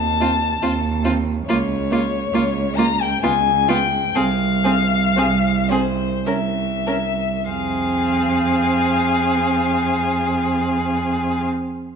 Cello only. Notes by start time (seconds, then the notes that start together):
Already playing: D#2
0.62 D#2
1.47 C#2
2.33 C#2
3.23 C#2
4.16 C2
5.16 C2
6.26 C2
7.49 F2